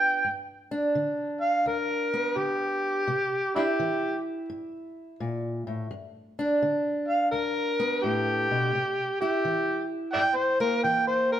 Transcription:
0.00 0.20 D3 medium
0.00 0.23 B3 medium
0.00 0.23 D4 medium
0.00 0.23 F4 medium
0.00 0.45 G5 loud
0.25 0.91 G2 medium
0.71 3.05 D4 medium
0.95 1.61 D3 medium
1.41 1.65 F5 medium
1.66 2.32 D2 medium
1.66 2.38 A#4 medium
2.14 3.05 B3 medium
2.36 3.03 D3 medium
2.36 3.51 G4 medium
3.08 3.74 C3 medium
3.55 3.63 D4 medium
3.55 3.62 E4 medium
3.55 5.89 E4 medium
3.55 4.23 G4 medium
3.79 4.45 E3 medium
4.50 5.15 G2 medium
5.20 5.67 A#2 medium
5.67 5.90 A2 medium
5.91 6.57 G2 medium
6.39 8.71 D4 medium
6.62 7.28 D3 medium
7.09 7.31 F5 medium
7.32 7.98 D2 medium
7.32 8.05 A#4 medium
7.80 8.71 B3 medium
8.03 8.50 A2 medium
8.03 9.16 G4 medium
8.51 8.74 B2 medium
8.75 9.40 C3 medium
9.21 11.40 E4 medium
9.21 9.89 G4 medium
9.45 10.10 E3 medium
10.13 10.80 G2 medium
10.13 10.22 D5 medium
10.13 10.20 E5 medium
10.13 10.37 G5 loud
10.36 10.59 C5 medium
10.60 11.40 A#3 medium
10.60 10.83 A#4 medium
10.84 11.40 E3 medium
10.84 11.07 G5 medium
11.07 11.30 C5 medium
11.32 11.40 A#4 medium

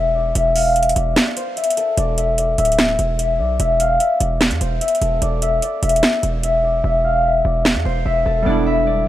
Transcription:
0.00 0.33 E1 loud
0.00 0.72 A4 medium
0.00 0.10 C5 medium
0.00 0.15 D5 medium
0.00 0.35 E5 medium
0.15 0.96 D5 medium
0.35 0.94 E1 loud
0.35 0.62 E5 medium
0.35 closed hi-hat medium
0.56 0.82 F5 medium
0.56 open hi-hat medium
0.76 1.57 E5 medium
0.76 closed hi-hat medium
0.83 closed hi-hat medium
0.89 closed hi-hat medium
0.96 1.16 E1 loud
0.96 1.97 D5 medium
0.96 closed hi-hat medium
1.16 snare loud
1.16 closed hi-hat medium
1.37 3.35 C5 medium
1.37 closed hi-hat medium
1.57 2.17 E5 medium
1.57 closed hi-hat soft
1.64 closed hi-hat medium
1.70 closed hi-hat medium
1.77 3.97 A4 medium
1.77 closed hi-hat medium
1.97 2.56 E1 loud
1.97 2.38 D5 loud
1.97 closed hi-hat medium
2.18 2.58 E5 medium
2.18 closed hi-hat medium
2.38 3.39 D5 medium
2.38 closed hi-hat medium
2.58 2.97 D1 loud
2.58 3.19 E5 medium
2.58 closed hi-hat medium
2.65 closed hi-hat medium
2.72 closed hi-hat medium
2.79 snare loud
2.79 closed hi-hat medium
2.99 3.41 E1 loud
2.99 closed hi-hat medium
3.19 3.59 E5 medium
3.19 closed hi-hat medium
3.39 3.59 B1 medium
3.39 4.20 D5 medium
3.60 3.99 E1 loud
3.60 3.86 E5 medium
3.60 closed hi-hat medium
3.80 4.06 F5 medium
3.80 closed hi-hat medium
4.00 4.81 E5 medium
4.00 closed hi-hat medium
4.20 4.52 E1 loud
4.20 5.21 D5 medium
4.20 closed hi-hat medium
4.41 snare loud
4.41 closed hi-hat medium
4.51 4.60 E2 loud
4.51 closed hi-hat medium
4.61 4.80 E1 loud
4.61 6.59 C5 medium
4.61 closed hi-hat medium
4.81 5.42 E5 medium
4.81 closed hi-hat medium
4.88 closed hi-hat medium
4.95 closed hi-hat soft
5.01 5.21 E1 loud
5.01 7.21 A4 medium
5.01 closed hi-hat medium
5.22 5.61 E1 loud
5.22 5.62 D5 loud
5.22 closed hi-hat medium
5.42 5.82 E5 medium
5.42 closed hi-hat medium
5.62 6.63 D5 medium
5.62 closed hi-hat medium
5.83 6.02 E1 loud
5.83 6.43 E5 medium
5.83 closed hi-hat medium
5.89 closed hi-hat medium
5.96 closed hi-hat medium
6.03 snare loud
6.03 closed hi-hat medium
6.23 6.82 E1 loud
6.23 closed hi-hat medium
6.43 6.84 E5 medium
6.43 closed hi-hat medium
6.64 7.44 D5 medium
6.84 7.42 E1 loud
6.84 7.10 E5 medium
7.04 7.31 F5 medium
7.25 8.05 E5 medium
7.45 7.77 E1 loud
7.45 8.46 D5 medium
7.65 snare loud
7.75 7.85 E2 loud
7.85 8.05 E1 loud
7.85 9.08 C5 medium
8.06 8.25 E1 loud
8.06 8.66 E5 medium
8.26 8.45 E1 loud
8.26 9.08 A4 medium
8.43 9.05 E1 loud
8.43 9.08 G3 medium
8.43 9.08 B3 medium
8.43 8.86 D5 loud
8.47 9.08 D4 medium
8.47 9.08 E4 medium
8.66 9.07 E5 medium
8.87 9.08 D5 medium

